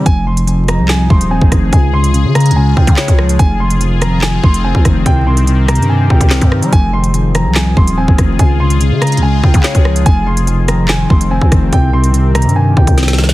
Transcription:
0.06 F1 F2 C3 F3 D#4 G#4 G#5, kick, closed hi-hat
0.27 F2 C6
0.37 closed hi-hat
0.47 F2, closed hi-hat
0.68 F2 A#5, cross-stick, closed hi-hat
0.79 C2
0.88 F2 G#5, snare, clap
1.10 D#1 F2 C6, kick
1.21 closed hi-hat
1.31 C4 G#5
1.42 F1, kick
1.52 F1 D#3, kick, cross-stick, closed hi-hat
1.73 C#2 C#3 G#3 F4 G#5, kick, closed hi-hat
1.94 C#3 C6
2.04 closed hi-hat
2.14 C#3, closed hi-hat
2.25 C#3
2.35 C#3 A#5, cross-stick, closed hi-hat
2.40 closed hi-hat
2.46 closed hi-hat
2.51 C#2, closed hi-hat
2.56 C#3 G#5
2.77 C2 C#3 G5, kick
2.87 C#3, kick, closed hi-hat
2.97 C#5, snare, clap, closed hi-hat
3.08 C#2, kick, closed hi-hat
3.19 F3, cross-stick
3.29 closed hi-hat
3.39 F1 F2 D#3 C4 F4 G#4 G#5, kick, closed hi-hat
3.60 F2 C6
3.70 closed hi-hat
3.81 F2, closed hi-hat
4.02 F2 A#5, cross-stick, closed hi-hat
4.22 F2 G#5, snare, clap
4.43 F1 F2 C6, kick
4.54 closed hi-hat
4.64 C4 G#5
4.75 C2, kick
4.85 F1 D#3, kick, cross-stick, closed hi-hat
5.06 C2 C3 G4 A#4 G5, kick, closed hi-hat
5.27 C3 C6
5.37 closed hi-hat
5.47 C3, closed hi-hat
5.68 C3 A#5, cross-stick, closed hi-hat
5.75 G2, closed hi-hat
5.82 closed hi-hat
5.89 C3 G#5
6.10 C2 C3 G5, kick
6.21 C2, kick, closed hi-hat
6.30 C4, snare, clap, closed hi-hat
6.41 G2, kick, closed hi-hat
6.52 D#3, cross-stick
6.62 G3, closed hi-hat
6.72 F1 F2 F4 G#4 G#5, kick, closed hi-hat
6.93 F2 C6
7.04 closed hi-hat
7.14 F2, closed hi-hat
7.35 F2 A#5, cross-stick, closed hi-hat
7.45 C2
7.55 F2 G#5, snare, clap
7.77 D#1 F2 C6, kick
7.87 closed hi-hat
7.98 C4 G#5
8.08 F1, kick
8.18 F1 D#3, kick, cross-stick, closed hi-hat
8.39 C#2 C#3 G#3 G#5, kick, closed hi-hat
8.60 C#3 C6
8.70 closed hi-hat
8.81 C#3, closed hi-hat
8.91 C#3
9.01 C#3 A#5, cross-stick, closed hi-hat
9.07 closed hi-hat
9.12 closed hi-hat
9.17 C#2, closed hi-hat
9.23 C#3 G#5
9.43 C2 C#3 G5, kick
9.54 C#3, kick, closed hi-hat
9.63 C#5, snare, clap, closed hi-hat
9.75 C#2, kick, closed hi-hat
9.85 F3, cross-stick
9.96 closed hi-hat
10.06 F1 F2 D#3 C4 G#5, kick, closed hi-hat
10.27 F2 C6
10.37 closed hi-hat
10.47 F2, closed hi-hat
10.68 F2 A#5, cross-stick, closed hi-hat
10.88 F2 G#5, snare, clap
11.10 F1 F2 C6, kick
11.21 closed hi-hat
11.31 C4 G#5
11.41 C2, kick
11.52 F1 D#3, kick, cross-stick, closed hi-hat
11.72 C2 C3 D#3 G4 A#4 G5, kick, closed hi-hat
11.93 C3 C6
12.04 closed hi-hat
12.14 C3, closed hi-hat
12.35 C3 A#5, cross-stick, closed hi-hat
12.42 G2, closed hi-hat
12.49 closed hi-hat
12.56 C3 G#5
12.77 C2 C3 G5, kick
12.87 C2, kick, closed hi-hat
12.98 C4, snare, closed hi-hat
13.03 snare
13.08 snare, closed hi-hat
13.13 snare
13.18 D#3, snare
13.24 snare
13.29 snare, closed hi-hat

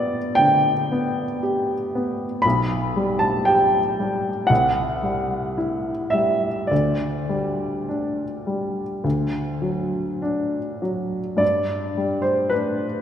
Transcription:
Already playing: G2 B3 G4 D5 E5
0.35 D3 G5
0.92 B3
1.43 G4
1.95 B3
2.42 B1 B5
2.96 G3
3.19 A5
3.45 G4 G5
4.00 G3
4.47 C2 F#5
5.03 G3
5.58 E4
6.10 G3 E5
6.67 D2 D5
7.29 G3
7.89 D4
8.47 G3
9.04 D2
9.62 F#3
10.22 D4
10.82 F#3
11.37 G2 D5
11.97 G3
12.22 C5
12.50 D4 B4

